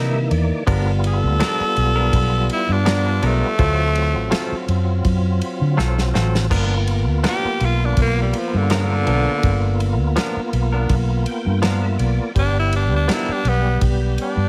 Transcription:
Already playing: C3 D#3 E3 G3 A#3 D#4 E4 A#4 E5
0.31 E2 D5, ride
0.67 G1 F3 G3 B3 D4 F4 A#4, kick, ride
1.04 A4, ride
1.24 D2
1.40 F3 B3 D4 A#4, snare, ride
1.60 muted fingered electric bass stroke
1.76 B1, ride
1.96 B3 D4 A#4
2.13 B1, kick, ride
2.50 E4, ride
2.69 G2 D4
2.86 F3 B3 D4 A#4, snare, ride
3.22 B1 F3 B3 D4 A#4, ride
3.26 A3
3.58 D2 F#3 C4 F4 A4, kick, ride
3.95 ride
4.15 A1
4.31 F#3 C4 F4 A4, snare, ride
4.52 muted fingered electric bass stroke
4.68 F#2, ride
5.05 F#2, kick, ride
5.42 ride
5.61 D3
5.77 B1 F#3 C4 F4 A4, snare
5.99 snare
6.14 A1 F#3 C4 F4 A4, snare
6.35 snare
6.50 G1 F3 A#3 B3 D4 F4 A#4, kick, crash
6.87 ride
7.08 D2
7.24 F3 B3 D4 A#4, snare, ride
7.28 G4
7.44 muted fingered electric bass stroke
7.60 B1, ride
7.65 F4
7.85 D4
7.97 B1, kick, ride
8.02 A#3
8.21 G3
8.33 ride
8.38 F3
8.54 G2 D3
8.70 D3 F3 B3 D4 A#4, snare, ride
9.06 B1 F3 B3 D4 A#4, ride
9.43 G1, kick, ride
9.80 ride
10.00 D2
10.16 F3 B3 D4 A#4, snare, ride
10.36 muted fingered electric bass stroke
10.53 B1, ride
10.72 B3 D4 A#4
10.89 B1, kick, ride
11.25 G5, ride
11.46 G2
11.62 F3 B3 D4 A#4 F5, snare, ride
11.82 E5
11.98 B1 D5, ride
12.35 G1 G3 B3 D4 G4, kick, ride
12.59 E4
12.73 D4, ride
12.92 D2 D4
13.08 F3 B3 D4 A#4, snare, ride
13.13 E4
13.28 D4, muted fingered electric bass stroke
13.45 B1 B3, ride
13.81 B1, kick, ride
14.18 D4, ride
14.37 G2

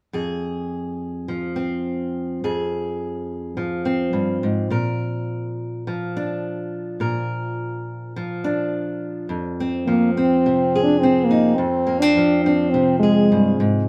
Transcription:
0.13 F2 G#4
1.28 F3
1.56 C4
2.44 F2 G#4
3.57 F3
3.85 C4
4.13 G2
4.43 G#2
4.70 A#2 A#4
5.87 F3
6.17 D4
7.00 A#2 A#4
8.16 F3
8.44 D4
9.29 F2
9.60 C4
9.87 F3 A#3
10.13 C4
10.46 C3
10.75 G#4
10.84 D4
10.99 C4
11.03 C4
11.24 A#3
11.31 D#4
11.55 F2 C4
11.87 A#3
11.99 C4 D4
12.17 F3
12.44 C4 D4
12.70 C3 C4
12.99 G#3 G#4
13.32 G2
13.60 G#2

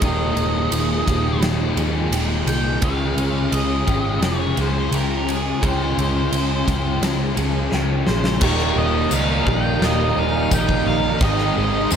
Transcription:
0.01 D#1 D#2 A#2 D#3 G#3 A#3 D#4 G4 D#5, kick, ride
0.37 D#1 G#4, ride
0.71 D#1 G#4, ride
1.07 D#1 D#2 A#2 D#3 G#3 A#3 D#4 G4, kick, snare, ride
1.41 D#1 G4, snare, ride
1.76 D#2 A#2 D#3 G#4, ride
1.80 D#2
2.11 D#1 D#2 A#2 G4, ride
2.15 D#3
2.46 C2 G#4 G5, ride
2.81 C#2 C#3 G#3 C#4 F4 F5 G5, kick, ride
2.85 G#4
3.16 C#2 G#4, ride
3.52 C#2 G#4 D#5, ride
3.86 G#1 C#3 G#3 C#4 F4 G#4 G5, kick, ride
4.21 F1 C#5 G5, snare, ride
4.56 C#2 C#3 G#3 C#4 G#4, ride
4.61 C5
4.91 C#2 C#3 G#3 C#4 A#4 G5, ride
5.28 G#4, ride
5.61 C#2 C#3 G#3 C#4 F4 G#4 C5 G5, kick, ride
5.98 C#2 G#4, ride
6.32 C#2 G#4, ride
6.66 C#2 C#3 G#3 C#4 F4 G#4 G5, kick, snare, ride
7.02 C#2 G5, snare, ride
7.36 C#2 C#3 G#3 C#4 G#4, ride
7.71 C#2 C#3 G#3 C#4 G5, snare
8.07 A#1 G#4 C5, snare
8.24 snare
8.41 D#1 D#2 A#2 D#3 G3 A#3 D#4 G4 A#4 C#5 A#5 D#6, kick, crash
8.59 snare
8.76 D#1 D#3 G3 A#3 D#4 A#4 D#5
9.10 C#2 D#3 G3 A#3 D#4 A#4, tambourine, crash
9.14 F5
9.46 A#1 G4 G5, kick
9.81 D#1 D#2 A#2 D#3 G3 A#3 D#4 G4 D#5, snare, crash
10.17 D#1 D#3 G3 A#3 D#4 F5 G#5
10.51 A#1 D#3 G3 A#3 D#4 G4 G5, kick, tambourine, crash
10.69 kick
10.86 A#1 D#3 G3 A#3 D#4 A#4 F5
11.19 G#1 G#2 D#3 G#3 C4 D#4 G4 D#5 C6, kick, crash
11.38 snare
11.55 G#1 G#3 C4 D#4 G#4 D#5
11.90 F2 D#3 G#3 C4 D#4 G#4 C5, tambourine, crash

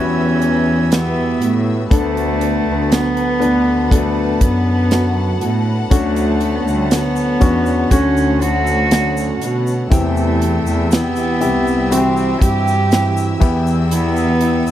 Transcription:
Already playing: E2 E3 B3 C#4 E4 F#4 G4 B4 E5 E6
0.42 closed hi-hat
0.91 E3 B3 E4 G4, snare, closed hi-hat
1.41 A2 B3 E4 G4, closed hi-hat
1.91 D2 D3 F#3 A3 B3 D4 F#4 A4 B4 F#5 A5, kick, closed hi-hat
2.17 closed hi-hat
2.41 B3 F#4 A4, closed hi-hat
2.67 D2
2.91 D3 F#3 B3 F#4 A4, snare, closed hi-hat
3.17 closed hi-hat
3.40 D2 B3 D4 F#4 A4 B4, closed hi-hat
3.91 F#3 A3 B3 D4 F#4 A4, kick, closed hi-hat
4.41 F#2 B3, kick, closed hi-hat
4.91 D3 F#3 B3 F#4 A4, snare, closed hi-hat
5.41 A2 B3 F#4 A4, closed hi-hat
5.90 D2 D3 F#3 A3 C#4 D4 F#4 C#5, kick, closed hi-hat, shaker
6.16 closed hi-hat, shaker
6.41 A3 C#4 F#4, closed hi-hat
6.56 B3
6.65 D2 A3, shaker
6.74 G3
6.84 A3
6.91 D3 F#3 A3 B3 C#4 F#4, snare, closed hi-hat, shaker
7.16 shaker
7.40 E2 A3 C#4 D4 F#4, kick, closed hi-hat, shaker
7.66 shaker
7.90 D2 D3 F#3 A3 C#4 F#4, kick, closed hi-hat, shaker
8.17 shaker
8.42 F#4, closed hi-hat, shaker
8.67 shaker
8.91 D3 F#3 A3 C#4 F#4, snare, closed hi-hat, shaker
9.17 shaker
9.41 B2 A3 C#4 F#4, closed hi-hat, shaker
9.67 shaker
9.90 E2 C3 E3 A3 C4 E4 G4 E5 G5 E6, kick, closed hi-hat, shaker
10.17 shaker
10.41 C4 E4 G4, closed hi-hat
10.67 E2, shaker
10.91 E3 B3 E4 G4, snare, closed hi-hat, shaker
11.16 closed hi-hat, shaker
11.40 C2 C3 E4 G4, closed hi-hat, shaker
11.67 shaker
11.90 E3 C4 E4 F#4 G4, closed hi-hat, shaker
11.98 G4
12.17 shaker
12.41 G2 G4, kick, closed hi-hat, shaker
12.68 shaker
12.92 E3 C4 E4 G4, snare, closed hi-hat, shaker
13.17 shaker
13.40 E2 E3 B3 E4 G4 B4 G5, kick, crash, shaker
13.67 shaker
13.91 E3 B3 E4 G4, closed hi-hat, shaker
14.16 shaker
14.41 B3 E4 G4, closed hi-hat
14.66 E2, shaker

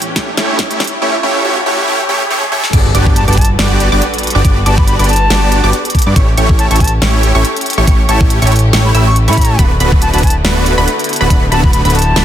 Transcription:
Already playing: A2 E3 C#4 G4 B4, riser
0.02 closed hi-hat
0.16 A3 C#4 E4 G4 C#5, kick, snare, closed hi-hat
0.37 A3 C#4 E4 G4 C#5, snare, closed hi-hat
0.59 kick, snare, closed hi-hat
0.71 A3 C#4 E4 G4 C#5, closed hi-hat
0.80 snare, closed hi-hat
0.84 closed hi-hat
0.87 closed hi-hat
1.02 A3 C#4 E4 G4 C#5
1.23 A3 C#4 E4 G4 C#5
1.45 A3 C#4 E4 G4 C#5
1.66 A3 C#4 E4 G4 C#5
1.88 A3 C#4 E4 G4 C#5
2.09 A3 C#4 E4 G4 C#5
2.30 A3 C#4 E4 G4 C#5
2.42 high tom
2.52 A3 C#4 E4 G4 C#5, mid tom
2.64 snare
2.73 G1 G3 B3 D4 F#4 G4 A4 B4 D5 D6, kick, closed hi-hat, crash, impact
2.95 G1 B3 D4 F#4 G4 D5 D6, closed hi-hat
3.06 kick
3.16 A5, closed hi-hat
3.28 G1 B3 D4 F#4 G4 D5 A5 D6, closed hi-hat
3.33 closed hi-hat
3.37 A5, kick, closed hi-hat
3.41 closed hi-hat
3.45 closed hi-hat
3.59 G1 B3 D4 F#4 G4 D5 D6, snare, closed hi-hat
3.80 closed hi-hat
3.92 G1 B3 D4 F#4 G4 D5 D6
4.02 closed hi-hat
4.14 closed hi-hat
4.18 closed hi-hat
4.23 closed hi-hat
4.27 closed hi-hat
4.30 closed hi-hat
4.35 G1 B3 D4 F#4 G4 D5 D6
4.45 G1 B3 D4 F#4 G4 D5 D6, kick, closed hi-hat
4.66 G1 B3 D4 F#4 G4 D5 A5 D6, closed hi-hat
4.78 B5, kick
4.87 B5, closed hi-hat
4.99 G1 B3 D4 F#4 G4 D5 B5 D6, closed hi-hat
5.04 closed hi-hat
5.09 A5, closed hi-hat
5.13 closed hi-hat
5.16 closed hi-hat
5.30 G1 B3 D4 F#4 G4 D5 D6, snare, closed hi-hat
5.52 closed hi-hat
5.64 G1 B3 D4 F#4 G4 D5 D6
5.73 closed hi-hat
5.85 closed hi-hat
5.90 closed hi-hat
5.95 kick, closed hi-hat
5.99 closed hi-hat
6.02 closed hi-hat
6.07 G2 B3 D4 F#4 G4 D5 D6
6.16 A1 A3 C#4 E4 G4 C#5 C#6, kick, closed hi-hat
6.38 A1 A3 C#4 E4 G4 C#5 C#6, closed hi-hat
6.49 kick
6.59 A5, closed hi-hat
6.71 A1 A3 C#4 E4 G4 C#5 A5 C#6, closed hi-hat
6.76 closed hi-hat
6.80 A5, kick, closed hi-hat
6.84 closed hi-hat
6.88 closed hi-hat
7.02 A1 A3 C#4 E4 G4 C#5 C#6, snare, closed hi-hat
7.23 closed hi-hat
7.35 A1 A3 C#4 E4 G4 C#5 C#6
7.45 closed hi-hat
7.56 closed hi-hat
7.61 closed hi-hat
7.66 closed hi-hat
7.70 closed hi-hat
7.73 closed hi-hat
7.78 A1 A3 C#4 E4 G4 C#5 C#6
7.87 A1 A3 C#4 E4 G4 C#5 C#6, kick, closed hi-hat
8.09 A1 A3 C#4 E4 G4 C#5 A5 C#6, closed hi-hat
8.21 kick
8.30 closed hi-hat
8.42 A1 A3 C#4 E4 G4 C#5 C#6, closed hi-hat
8.47 closed hi-hat
8.52 closed hi-hat
8.56 closed hi-hat
8.59 closed hi-hat
8.73 A1 A3 C#4 E4 G4 C#5 C#6, snare, closed hi-hat
8.85 B5
8.95 A1 A3 C#4 E4 G4 E5 B5 E6, closed hi-hat
9.06 C#6
9.16 closed hi-hat
9.28 A2 A3 C#4 E4 G4 C#5 B5 C#6, closed hi-hat
9.33 closed hi-hat
9.37 kick, closed hi-hat
9.41 closed hi-hat
9.45 closed hi-hat
9.59 D1 D3 A3 B3 D4 E4 F#4 B4 B5, kick, closed hi-hat
9.80 D1 A3 B3 D4 F#4 B4 B5, closed hi-hat
9.92 kick
10.02 A5, closed hi-hat
10.14 D1 A3 B3 D4 F#4 B4 A5 B5, closed hi-hat
10.18 closed hi-hat
10.23 A5, kick, closed hi-hat
10.27 closed hi-hat
10.30 closed hi-hat
10.45 D1 A3 B3 D4 F#4 B4 B5, snare, closed hi-hat
10.66 closed hi-hat
10.78 D1 A3 B3 D4 F#4 B4 B5
10.88 closed hi-hat
10.99 closed hi-hat
11.04 closed hi-hat
11.09 closed hi-hat
11.13 closed hi-hat
11.16 closed hi-hat
11.21 D1 A3 B3 D4 F#4 B4 B5
11.30 D1 A3 B3 D4 F#4 B4 B5, kick, closed hi-hat
11.52 D1 A3 B3 D4 F#4 B4 A5 B5, closed hi-hat
11.64 B5, kick
11.73 B5, closed hi-hat
11.85 D1 A3 B3 D4 F#4 B4 B5, closed hi-hat
11.90 closed hi-hat
11.95 A5, closed hi-hat
11.99 closed hi-hat
12.02 closed hi-hat
12.16 D1 A3 B3 D4 F#4 B4 B5, snare, closed hi-hat

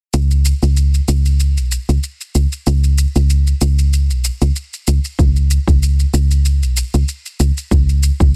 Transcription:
0.14 C#2, shaker
0.31 shaker
0.45 shaker
0.63 C#2, shaker
0.77 shaker
0.94 shaker
1.08 C#2, shaker
1.26 shaker
1.40 shaker
1.57 B1, shaker
1.72 shaker
1.89 C#2, shaker
2.03 shaker
2.21 shaker
2.35 C#2, shaker
2.52 shaker
2.67 C#2, shaker
2.84 shaker
2.98 shaker
3.16 C#2, shaker
3.30 shaker
3.47 shaker
3.61 C#2, shaker
3.79 shaker
3.93 shaker
4.10 B1, shaker
4.25 shaker
4.42 C#2, shaker
4.56 shaker
4.73 shaker
4.87 C#2, shaker
5.05 shaker
5.19 C#2, kick, shaker
5.36 shaker
5.51 shaker
5.67 C#2, kick, shaker
5.83 shaker
6.00 shaker
6.14 C#2, shaker
6.31 shaker
6.45 shaker
6.62 B1, shaker
6.77 shaker
6.94 C#2, shaker
7.08 shaker
7.26 shaker
7.40 C#2, shaker
7.57 shaker
7.71 C#2, kick, shaker
7.89 shaker
8.03 shaker
8.20 C#2, kick, shaker

